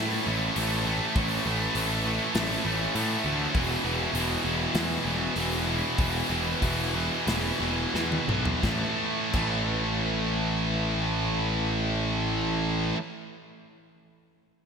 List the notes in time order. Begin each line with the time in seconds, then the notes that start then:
Already playing: A2 E3 A3
0.26 A1 A2 E3 A3
0.55 A1 A2 E3 A3, open hi-hat
0.86 A2 E3 A3
1.16 A1 A2 E3 A3, kick, open hi-hat
1.45 A1 A2 E3 A3
1.75 A1 A2 E3 A3, open hi-hat
2.05 A2 E3 A3
2.35 A1 A2 E3 A3, snare, open hi-hat
2.65 A1 A2 E3 A3
2.95 A2 E3 A3, open hi-hat
3.25 D2 A2 E3 A3
3.55 E1 E2 B2 E3, kick, open hi-hat
3.85 E1 E2 B2 E3
4.13 E1 E2 B2 E3, open hi-hat
4.44 E1 E2 B2 E3
4.74 E2 B2 E3, snare, open hi-hat
5.05 E1 E2 B2 E3
5.36 E1 E2 B2 E3, open hi-hat
5.67 E2 B2 E3
5.98 E1 E2 B2 E3, kick, open hi-hat
6.29 E1 E2 B2 E3
6.61 E1 E2 B2 E3, kick, open hi-hat
6.93 E2 B2 E3
7.26 E1 E2 B2 E3, snare, open hi-hat
7.59 E1 E2 B2 E3
7.93 E2 B2 E3, snare
8.12 high tom
8.28 B1 E2 B2 E3, mid tom
8.45 floor tom
8.62 A1 A2 E3, kick, snare
8.66 A3
9.32 A1 A2 E3, kick, crash
9.36 A3